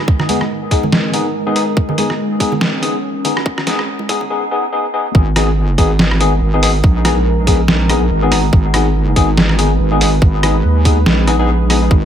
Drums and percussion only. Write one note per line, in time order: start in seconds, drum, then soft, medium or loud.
0.08 kick loud
0.19 cross-stick medium
0.19 low conga loud
0.29 closed hi-hat medium
0.29 high conga loud
0.41 cross-stick soft
0.71 kick medium
0.71 closed hi-hat medium
0.83 high conga medium
0.83 low conga medium
0.92 snare loud
1.14 closed hi-hat medium
1.56 closed hi-hat medium
1.77 kick loud
1.89 low conga loud
1.98 closed hi-hat medium
1.98 high conga medium
2.10 cross-stick soft
2.40 kick medium
2.40 closed hi-hat medium
2.52 high conga medium
2.52 low conga loud
2.61 snare loud
2.83 closed hi-hat medium
3.25 closed hi-hat medium
3.25 low conga medium
3.37 cross-stick medium
3.46 kick loud
3.58 cross-stick medium
3.58 low conga medium
3.67 snare medium
3.67 closed hi-hat medium
3.67 high conga medium
3.79 cross-stick medium
3.99 high conga medium
4.09 kick medium
4.09 closed hi-hat medium
4.21 high conga medium
4.21 low conga medium
5.15 kick loud
5.36 cross-stick medium
5.36 closed hi-hat medium
5.78 kick medium
5.78 closed hi-hat medium
5.99 snare loud
6.11 cross-stick medium
6.21 closed hi-hat medium
6.63 open hi-hat loud
6.84 kick loud
7.05 cross-stick medium
7.05 closed hi-hat medium
7.47 kick medium
7.47 closed hi-hat medium
7.68 snare loud
7.89 cross-stick soft
7.89 closed hi-hat medium
8.32 cross-stick medium
8.32 open hi-hat medium
8.53 kick loud
8.74 cross-stick medium
8.74 closed hi-hat medium
9.16 kick medium
9.16 closed hi-hat medium
9.38 snare loud
9.49 cross-stick medium
9.59 closed hi-hat medium
10.01 open hi-hat medium
10.22 kick loud
10.43 cross-stick medium
10.43 closed hi-hat medium
10.85 kick medium
10.85 closed hi-hat medium
11.06 snare loud
11.27 cross-stick soft
11.27 closed hi-hat medium
11.70 cross-stick medium
11.70 open hi-hat medium
11.91 kick loud